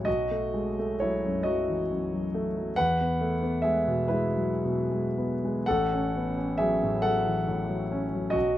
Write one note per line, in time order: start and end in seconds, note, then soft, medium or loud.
0.05 2.72 B1 soft
0.05 0.95 F#4 medium
0.05 0.98 D#5 medium
0.31 0.68 A3 soft
0.54 0.77 G#3 soft
0.79 1.14 A3 soft
1.00 1.37 F#3 soft
1.00 1.42 E4 soft
1.00 1.45 C#5 medium
1.26 1.59 F#2 soft
1.43 1.81 F#3 soft
1.43 2.72 F#4 medium
1.43 2.75 D#5 medium
1.69 1.90 E3 soft
1.92 2.26 F#2 soft
2.14 2.47 F#3 soft
2.34 2.68 A3 soft
2.57 2.77 F#3 soft
2.76 5.63 E2 medium
2.76 3.58 B4 medium
2.76 3.61 F#5 loud
3.01 3.33 B3 soft
3.21 3.41 A3 soft
3.43 3.77 B3 soft
3.62 4.00 G#3 soft
3.62 4.06 G#4 medium
3.62 4.09 E5 medium
3.87 4.25 B2 soft
4.08 4.51 G#3 soft
4.08 5.63 E4 medium
4.08 5.66 B4 medium
4.36 4.62 F#3 soft
4.64 5.06 B2 soft
4.92 5.33 G#3 soft
5.18 5.58 B3 soft
5.45 5.68 G#3 soft
5.66 8.33 A1 medium
5.66 6.54 A4 medium
5.66 6.57 F#5 medium
5.93 6.28 C#4 soft
6.17 6.37 B3 soft
6.38 6.72 C#4 soft
6.58 6.94 F#3 soft
6.58 6.99 G#4 medium
6.58 7.01 E5 medium
6.83 7.16 A2 soft
7.02 7.37 F#3 soft
7.02 8.31 A4 medium
7.02 8.35 F#5 medium
7.26 7.46 E3 soft
7.48 7.82 A2 soft
7.69 8.04 F#3 soft
7.92 8.27 C#4 soft
8.12 8.35 F#3 soft
8.30 8.58 B1 medium
8.30 8.58 F#4 medium
8.30 8.58 D#5 medium